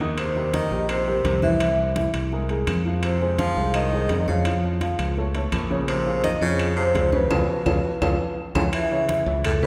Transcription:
Already playing: fingered electric bass D#2
0.00 upright piano D#3 D#4 D#5, high conga
0.18 baritone saxophone C3, vibraphone C5, high conga, high timbale, claves
0.36 upright piano G3 G4 A#4, high conga
0.54 baritone saxophone D#3, vibraphone D#5, high conga, high timbale
0.71 fingered electric bass A#1, upright piano G3 G4 A#4, high conga
0.89 baritone saxophone C3, vibraphone C5, high conga, high timbale, claves
1.07 upright piano G3 G4 A#4, high conga
1.24 fingered electric bass C2, high conga, high timbale
1.42 baritone saxophone E3, upright piano E3 E4 E5, vibraphone E5, high conga
1.60 upright piano E3 E4 E5, high conga, high timbale, claves
1.78 high conga
1.96 upright piano E3 E4 E5, high conga, high timbale
2.14 fingered electric bass C2, high conga, high timbale, claves
2.32 upright piano G#3 G#4 A#4, high conga
2.49 upright piano G#3 G#4 A#4, high conga, high timbale
2.67 fingered electric bass F2, high conga, high timbale, claves
2.85 upright piano F3 F4 F5, high conga
3.03 baritone saxophone C3, vibraphone C5, high conga, high timbale, claves
3.21 upright piano G#3 G#4 C5, high conga
3.38 baritone saxophone F3, vibraphone F5, high conga, high timbale
3.56 fingered electric bass C2, upright piano G#3 G#4 C5, high conga
3.74 baritone saxophone D#3, vibraphone D#5, high conga, high timbale, claves
3.92 upright piano G#3 G#4 C5, high conga
4.09 fingered electric bass F2, high conga, high timbale, low timbale
4.28 baritone saxophone C#3, upright piano F3 F4 F5, vibraphone C#5, high conga
4.45 upright piano F3 F4 F5, high conga, high timbale, claves
4.64 high conga
4.81 upright piano F3 F4 F5, high conga, high timbale
4.99 fingered electric bass C#2, high conga, high timbale, claves
5.17 upright piano A3 A4 C#5, high conga
5.35 upright piano A3 A4 C#5, high conga, high timbale
5.52 fingered electric bass A#1, high conga, high timbale, claves
5.70 upright piano C#3 C#4 C#5, high conga
5.88 baritone saxophone C3, vibraphone C5, high conga, high timbale, claves
6.06 upright piano F3 F4 G#4, high conga
6.24 baritone saxophone D#3, vibraphone D#5, high conga, high timbale
6.41 fingered electric bass F2, baritone saxophone C#3, upright piano F3 F4 G#4, vibraphone C#5, high conga
6.59 high conga, high timbale, claves
6.76 baritone saxophone C3, upright piano F3 F4 G#4, vibraphone C5, high conga
6.95 fingered electric bass C#2, high conga, high timbale, low timbale
7.12 baritone saxophone B2, upright piano C#3 C#4 C#5, vibraphone B4, high conga
7.30 fingered electric bass C#2, upright piano C#4 F4 A4, high conga, high timbale, claves
7.66 fingered electric bass C#2, upright piano C#4 F4 A4, high conga, high timbale, claves
8.02 fingered electric bass C#2, upright piano C#4 F4 A4, high conga, high timbale, claves
8.55 fingered electric bass C#2, baritone saxophone C#3, upright piano C#4 F4 A4, vibraphone C#5, high conga, high timbale, claves
8.73 baritone saxophone E3, vibraphone E5, high conga, high timbale, claves
8.91 upright piano C#3 C#4 C#5, high conga
9.09 high conga, high timbale
9.26 fingered electric bass C#2, upright piano E3 E4 E5, high conga
9.45 baritone saxophone A2, vibraphone A4, high conga, low conga, high timbale, claves
9.63 baritone saxophone B2, upright piano C#3 C#4 C#5, vibraphone B4, high conga, low conga

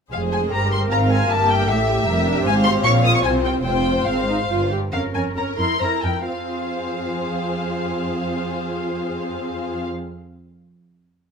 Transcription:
0.12 double bass section F1, cello section F2, viola section G#3 G#4, violin section G#4 C5 F5
0.32 violin section G#5
0.51 double bass section G1, cello section G2, violin section G4 A#5, viola section A#4
0.72 violin section C6
0.90 double bass section G#1, cello section G#2, viola section C4, violin section F4 F5 A#5
1.10 violin section G#5
1.29 double bass section G1, cello section G2, viola section A#3, violin section G4 E5 A5
1.50 violin section G5
1.68 double bass section A1, cello section A2, viola section A3 A4, violin section E5
1.89 viola section G4
2.07 double bass section F1, cello section F2, viola section G3, violin section A#4
2.27 viola section D4
2.46 double bass section G#1, cello section G#2, viola section C4, violin section C5 F5 G#5
2.65 violin section C6
2.83 double bass section A#1, cello section A#2, viola section F4, violin section C#5 F5 C#6
3.04 violin section D#6
3.15 violin section C#6
3.22 double bass section C2, cello section C3, viola section C4, violin section C5 G#5
3.44 violin section G5
3.64 double bass section F1, cello section F2, viola section C4 F4, violin section C5 G5
4.06 double bass section G#1, cello section G#2, viola section C4, violin section F5
4.28 viola section D#4
4.48 double bass section G1, cello section G2, viola section F4
4.71 viola section G4
4.92 cello section F2, viola section C#4 A#4, violin section F5
5.14 cello section F2, viola section C#4 A#4, violin section G#5
5.36 cello section F2, viola section C#4 A#4, violin section A#4 A#5
5.58 cello section F2, viola section E4 A#4, violin section C6
5.80 cello section F2, viola section E4 A#4, violin section C5 A#5
6.04 cello section F2, viola section E4 A#4, violin section G5
6.26 cello section F2, viola section C4 F4, violin section G#4 C5 F5

